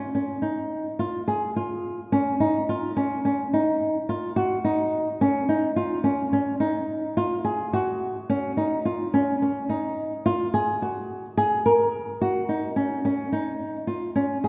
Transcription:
0, 0, Header, 1, 2, 480
1, 0, Start_track
1, 0, Tempo, 560224
1, 1817, Time_signature, 11, 3, 24, 8
1, 12409, End_track
2, 0, Start_track
2, 0, Title_t, "Nylon-string guitar"
2, 0, Program_c, 0, 24
2, 126, Note_on_c, 0, 61, 63
2, 314, Note_off_c, 0, 61, 0
2, 359, Note_on_c, 0, 63, 67
2, 734, Note_off_c, 0, 63, 0
2, 850, Note_on_c, 0, 65, 67
2, 1037, Note_off_c, 0, 65, 0
2, 1094, Note_on_c, 0, 68, 73
2, 1279, Note_off_c, 0, 68, 0
2, 1340, Note_on_c, 0, 65, 71
2, 1708, Note_off_c, 0, 65, 0
2, 1819, Note_on_c, 0, 61, 82
2, 2003, Note_off_c, 0, 61, 0
2, 2058, Note_on_c, 0, 63, 71
2, 2243, Note_off_c, 0, 63, 0
2, 2306, Note_on_c, 0, 65, 66
2, 2488, Note_off_c, 0, 65, 0
2, 2541, Note_on_c, 0, 61, 75
2, 2725, Note_off_c, 0, 61, 0
2, 2784, Note_on_c, 0, 61, 71
2, 2967, Note_off_c, 0, 61, 0
2, 3028, Note_on_c, 0, 63, 69
2, 3394, Note_off_c, 0, 63, 0
2, 3504, Note_on_c, 0, 65, 70
2, 3687, Note_off_c, 0, 65, 0
2, 3737, Note_on_c, 0, 66, 68
2, 3923, Note_off_c, 0, 66, 0
2, 3979, Note_on_c, 0, 63, 77
2, 4349, Note_off_c, 0, 63, 0
2, 4465, Note_on_c, 0, 61, 83
2, 4648, Note_off_c, 0, 61, 0
2, 4701, Note_on_c, 0, 63, 66
2, 4885, Note_off_c, 0, 63, 0
2, 4938, Note_on_c, 0, 65, 64
2, 5123, Note_off_c, 0, 65, 0
2, 5174, Note_on_c, 0, 61, 76
2, 5361, Note_off_c, 0, 61, 0
2, 5421, Note_on_c, 0, 61, 71
2, 5605, Note_off_c, 0, 61, 0
2, 5656, Note_on_c, 0, 63, 73
2, 6026, Note_off_c, 0, 63, 0
2, 6143, Note_on_c, 0, 65, 74
2, 6326, Note_off_c, 0, 65, 0
2, 6379, Note_on_c, 0, 68, 72
2, 6564, Note_off_c, 0, 68, 0
2, 6626, Note_on_c, 0, 66, 77
2, 6992, Note_off_c, 0, 66, 0
2, 7107, Note_on_c, 0, 61, 89
2, 7288, Note_off_c, 0, 61, 0
2, 7344, Note_on_c, 0, 63, 72
2, 7526, Note_off_c, 0, 63, 0
2, 7586, Note_on_c, 0, 65, 70
2, 7767, Note_off_c, 0, 65, 0
2, 7828, Note_on_c, 0, 61, 77
2, 8009, Note_off_c, 0, 61, 0
2, 8072, Note_on_c, 0, 61, 65
2, 8251, Note_off_c, 0, 61, 0
2, 8306, Note_on_c, 0, 63, 71
2, 8671, Note_off_c, 0, 63, 0
2, 8788, Note_on_c, 0, 65, 73
2, 8968, Note_off_c, 0, 65, 0
2, 9029, Note_on_c, 0, 68, 73
2, 9209, Note_off_c, 0, 68, 0
2, 9272, Note_on_c, 0, 66, 68
2, 9635, Note_off_c, 0, 66, 0
2, 9746, Note_on_c, 0, 68, 75
2, 9927, Note_off_c, 0, 68, 0
2, 9987, Note_on_c, 0, 70, 63
2, 10351, Note_off_c, 0, 70, 0
2, 10465, Note_on_c, 0, 66, 73
2, 10646, Note_off_c, 0, 66, 0
2, 10700, Note_on_c, 0, 63, 60
2, 10883, Note_off_c, 0, 63, 0
2, 10934, Note_on_c, 0, 61, 66
2, 11119, Note_off_c, 0, 61, 0
2, 11180, Note_on_c, 0, 61, 74
2, 11363, Note_off_c, 0, 61, 0
2, 11416, Note_on_c, 0, 63, 68
2, 11784, Note_off_c, 0, 63, 0
2, 11886, Note_on_c, 0, 65, 65
2, 12074, Note_off_c, 0, 65, 0
2, 12128, Note_on_c, 0, 61, 66
2, 12315, Note_off_c, 0, 61, 0
2, 12372, Note_on_c, 0, 68, 83
2, 12409, Note_off_c, 0, 68, 0
2, 12409, End_track
0, 0, End_of_file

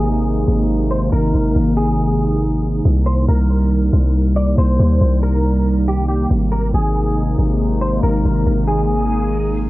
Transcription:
0, 0, Header, 1, 4, 480
1, 0, Start_track
1, 0, Tempo, 431655
1, 1251, Time_signature, 4, 2, 24, 8
1, 10785, End_track
2, 0, Start_track
2, 0, Title_t, "Clean electric guitar"
2, 0, Program_c, 0, 27
2, 0, Note_on_c, 0, 68, 68
2, 971, Note_off_c, 0, 68, 0
2, 1010, Note_on_c, 0, 72, 81
2, 1239, Note_off_c, 0, 72, 0
2, 1250, Note_on_c, 0, 70, 104
2, 1927, Note_off_c, 0, 70, 0
2, 1967, Note_on_c, 0, 68, 82
2, 3125, Note_off_c, 0, 68, 0
2, 3404, Note_on_c, 0, 72, 78
2, 3635, Note_off_c, 0, 72, 0
2, 3652, Note_on_c, 0, 70, 66
2, 4807, Note_off_c, 0, 70, 0
2, 4850, Note_on_c, 0, 74, 76
2, 5079, Note_off_c, 0, 74, 0
2, 5096, Note_on_c, 0, 72, 98
2, 5770, Note_off_c, 0, 72, 0
2, 5813, Note_on_c, 0, 70, 81
2, 6489, Note_off_c, 0, 70, 0
2, 6537, Note_on_c, 0, 67, 84
2, 6750, Note_off_c, 0, 67, 0
2, 6764, Note_on_c, 0, 67, 72
2, 6995, Note_off_c, 0, 67, 0
2, 7246, Note_on_c, 0, 70, 82
2, 7476, Note_off_c, 0, 70, 0
2, 7498, Note_on_c, 0, 68, 68
2, 8650, Note_off_c, 0, 68, 0
2, 8689, Note_on_c, 0, 72, 87
2, 8918, Note_off_c, 0, 72, 0
2, 8931, Note_on_c, 0, 70, 101
2, 9608, Note_off_c, 0, 70, 0
2, 9647, Note_on_c, 0, 68, 85
2, 10785, Note_off_c, 0, 68, 0
2, 10785, End_track
3, 0, Start_track
3, 0, Title_t, "Ambient pad"
3, 0, Program_c, 1, 92
3, 0, Note_on_c, 1, 48, 77
3, 0, Note_on_c, 1, 51, 73
3, 0, Note_on_c, 1, 56, 72
3, 0, Note_on_c, 1, 58, 73
3, 0, Note_on_c, 1, 63, 84
3, 3132, Note_off_c, 1, 56, 0
3, 3173, Note_on_c, 1, 55, 73
3, 6966, Note_off_c, 1, 48, 0
3, 6966, Note_off_c, 1, 51, 0
3, 6966, Note_off_c, 1, 58, 0
3, 6966, Note_off_c, 1, 63, 0
3, 6973, Note_off_c, 1, 55, 0
3, 7010, Note_on_c, 1, 48, 79
3, 7010, Note_on_c, 1, 51, 71
3, 7010, Note_on_c, 1, 56, 68
3, 7010, Note_on_c, 1, 58, 70
3, 7010, Note_on_c, 1, 63, 86
3, 10785, Note_off_c, 1, 48, 0
3, 10785, Note_off_c, 1, 51, 0
3, 10785, Note_off_c, 1, 56, 0
3, 10785, Note_off_c, 1, 58, 0
3, 10785, Note_off_c, 1, 63, 0
3, 10785, End_track
4, 0, Start_track
4, 0, Title_t, "808-style bass"
4, 0, Program_c, 2, 38
4, 0, Note_on_c, 2, 32, 105
4, 502, Note_off_c, 2, 32, 0
4, 531, Note_on_c, 2, 32, 107
4, 1222, Note_off_c, 2, 32, 0
4, 1251, Note_on_c, 2, 32, 109
4, 1482, Note_off_c, 2, 32, 0
4, 1491, Note_on_c, 2, 32, 94
4, 1721, Note_off_c, 2, 32, 0
4, 1731, Note_on_c, 2, 32, 107
4, 3126, Note_off_c, 2, 32, 0
4, 3172, Note_on_c, 2, 36, 108
4, 3632, Note_off_c, 2, 36, 0
4, 3651, Note_on_c, 2, 36, 99
4, 4342, Note_off_c, 2, 36, 0
4, 4371, Note_on_c, 2, 36, 103
4, 5062, Note_off_c, 2, 36, 0
4, 5091, Note_on_c, 2, 36, 108
4, 5321, Note_off_c, 2, 36, 0
4, 5331, Note_on_c, 2, 39, 98
4, 5561, Note_off_c, 2, 39, 0
4, 5571, Note_on_c, 2, 36, 102
4, 6966, Note_off_c, 2, 36, 0
4, 7011, Note_on_c, 2, 32, 109
4, 7472, Note_off_c, 2, 32, 0
4, 7491, Note_on_c, 2, 32, 103
4, 8182, Note_off_c, 2, 32, 0
4, 8211, Note_on_c, 2, 32, 100
4, 8902, Note_off_c, 2, 32, 0
4, 8931, Note_on_c, 2, 32, 107
4, 9161, Note_off_c, 2, 32, 0
4, 9172, Note_on_c, 2, 32, 94
4, 9402, Note_off_c, 2, 32, 0
4, 9411, Note_on_c, 2, 32, 103
4, 10785, Note_off_c, 2, 32, 0
4, 10785, End_track
0, 0, End_of_file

